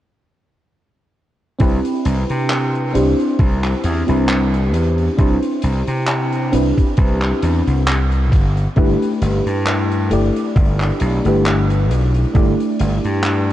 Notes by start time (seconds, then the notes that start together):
1.58 C2 C4 D4 E4 G4 B4, kick, closed hi-hat
1.85 closed hi-hat
2.05 C2, closed hi-hat
2.29 C3, closed hi-hat
2.50 clap, closed hi-hat
2.75 closed hi-hat
2.93 C2 C4 D4 E4 G4 C5, closed hi-hat
3.19 closed hi-hat
3.39 C2, kick, closed hi-hat
3.64 clap, closed hi-hat
3.84 E2, closed hi-hat
4.07 C2 C4 D4 E4 G4 B4, closed hi-hat
4.29 clap, closed hi-hat
4.54 closed hi-hat
4.74 E2, closed hi-hat
4.98 closed hi-hat
5.17 C2 C4 D4 E4 G4 C5, kick, closed hi-hat
5.42 closed hi-hat
5.62 C2, closed hi-hat
5.87 C3, closed hi-hat
6.07 clap, closed hi-hat
6.32 closed hi-hat
6.52 C2 C4 D4 E4 G4 B4, closed hi-hat
6.77 kick, closed hi-hat
6.97 C2, kick, closed hi-hat
7.22 clap, closed hi-hat
7.42 E2, closed hi-hat
7.67 C2, closed hi-hat
7.88 clap, closed hi-hat
8.12 closed hi-hat
8.32 G1, kick, closed hi-hat
8.57 closed hi-hat
8.76 G1 A3 D4 E4 G4 B4, kick, closed hi-hat
9.02 closed hi-hat
9.21 G1, closed hi-hat
9.46 G2, closed hi-hat
9.67 clap, closed hi-hat
9.92 closed hi-hat
10.10 G1 A3 D4 E4 G4 D5, closed hi-hat
10.36 closed hi-hat
10.56 G1, kick, closed hi-hat
10.80 clap, closed hi-hat
11.00 B1, closed hi-hat
11.24 G1 A3 D4 E4 G4 B4, closed hi-hat
11.46 clap, closed hi-hat
11.70 closed hi-hat
11.90 B1, closed hi-hat
12.15 closed hi-hat
12.34 G1 A3 D4 E4 G4 D5, kick, closed hi-hat
12.60 closed hi-hat
12.79 G1, closed hi-hat
13.04 G2, closed hi-hat
13.24 clap, closed hi-hat